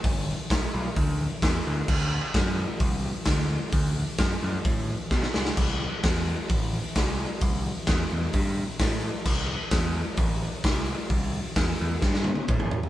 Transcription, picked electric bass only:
X:1
M:4/4
L:1/8
Q:1/4=130
K:Clyd
V:1 name="Picked electric bass" clef=bass
G,,,2 B,,, B,,, D,,2 E,, D,, | D,,2 F,,2 C,,2 D,,2 | D,,2 F,, F,, A,,2 B,, C,, | C,,2 E,,2 A,,,2 C,,2 |
C,,2 E,, E,, G,,2 A,,2 | C,,2 E,,2 A,,,2 C,,2 | C,,2 E,, E,, G,,2 A,,2 |]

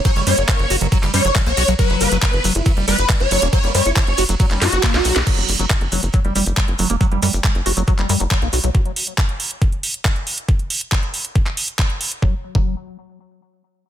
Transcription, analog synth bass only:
X:1
M:4/4
L:1/16
Q:1/4=138
K:none
V:1 name="Analog synth bass" clef=bass
z ^F,,, ^F,, F,,, z F,,, F,,, F,,, z F,,, F,, F,,, z B,,, B,,, B,,, | z ^F,,, F,,, F,,, z F,,, F,,, F,,, z F,,, F,,, F,,, z F,,, F,,, E,,, | z ^F,,, ^F,, F,,, z F,,, F,,, F,,, z F,,, F,, F,,, z B,,, B,,, B,,, | z ^F,,, F,,, F,,, z F,,, F,,, F,,, z F,,, F,,, F,,, z F,,, F,,, E,,, |
z ^F,,, ^F,, F,,, z F,,, F,,, F,,, z F,,, F,, F,,, z B,,, B,,, B,,, | z16 | z16 | ^F,,, z2 F,,,2 z8 z3 |]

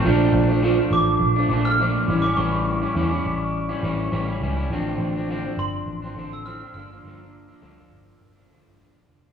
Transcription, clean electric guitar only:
X:1
M:4/4
L:1/16
Q:"Swing 16ths" 1/4=103
K:Bblyd
V:1 name="Clean electric guitar"
[B,,F,A,D]3 [F,A,D] [B,,F,A,D] [F,A,D]4 [F,A,D] [B,,F,A,D]2 [B,,F,A,D]2 [E,G,^CE] [G,CE] | [A,,E,G,^CE]3 [G,CE] [A,,E,G,CE] [G,CE]4 [G,CE] [E,G,CE]2 [A,,E,G,CE] [G,CE] [E,G,CE] [G,CE] | [A,,D,F,CD]3 [F,CD] [A,,D,F,CD] [F,CD]4 [F,CD] [D,F,CD]2 [A,,D,F,CD] [F,CD] [D,F,B,D] [F,B,D] | [G,,D,F,B,D] [F,B,D]2 [F,B,D] [G,,D,F,B,D] [F,B,D]4 [F,B,D] [D,F,B,D]2 [G,,D,F,B,D] [F,B,D] [D,F,B,D] [F,B,D] |]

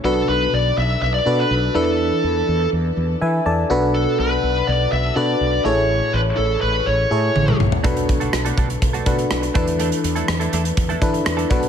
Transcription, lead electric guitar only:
X:1
M:4/4
L:1/16
Q:1/4=123
K:Bdor
V:1 name="Lead electric guitar"
A2 B2 d2 e2 e d2 B3 A2- | A6 z8 z2 | A2 B4 d2 e2 d4 c2- | c2 B2 A2 B2 c6 z2 |
z16 | z16 |]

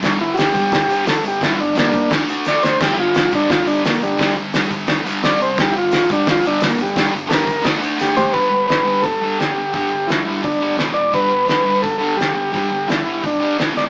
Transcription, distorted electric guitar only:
X:1
M:4/4
L:1/8
Q:1/4=173
K:Gmix
V:1 name="Distorted electric guitar" clef=bass
[G,,D,G,] [G,,D,] [G,,D,] [G,,D,G,] [G,,D,] [G,,D,G,] [G,,D,] [G,,D,] | [G,,D,G,] [G,,D,] [G,,D,G,] [G,,D,] [D,A,D] [D,A,D] [D,A,D] [D,A,] | [G,,D,G,] [G,,D,] [G,,D,] [G,,D,G,] [G,,D,] [G,,D,G,] [G,,D,] [G,,D,] | [G,,D,G,] [G,,D,] [G,,D,G,] [G,,D,] [G,,D,] [G,,D,G,] [C,G,C] [C,G,] |
[G,,D,G,] [G,,D,] [G,,D,] [G,,D,G,] [G,,D,] [G,,D,G,] [G,,D,] [G,,D,] | [G,,D,G,] [G,,D,] [G,,D,G,] [G,,D,] [D,A,D] [D,A,D] [D,A,D] [D,A,] | [G,,D,G,] [G,,D,] [G,,D,] [G,,D,G,] [G,,D,] [G,,D,G,] [G,,D,] [G,,D,] | [G,,D,G,] [G,,D,] [G,,D,] [G,,D,G,] [G,,D,] [G,,D,G,] [E,,B,,E,] [E,,B,,] |
[G,,D,G,] [G,,D,] [G,,D,] [G,,D,G,] [G,,D,] [G,,D,G,] [G,,D,] [G,,D,] | [G,,D,G,] [G,,D,] [G,,D,] [G,,D,G,] [G,,D,] [G,,D,G,] [E,,B,,E,] [E,,B,,] |]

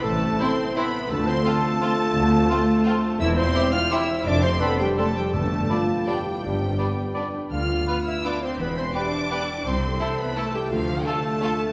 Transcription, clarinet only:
X:1
M:3/4
L:1/8
Q:1/4=168
K:Ddor
V:1 name="Clarinet"
A2 c2 B2 | A c A4- | A6 | e c2 f e2 |
d c B G A G | A3 z G2- | G4- G z | f3 e d c |
B c d4 | c3 B A G | F2 A4 |]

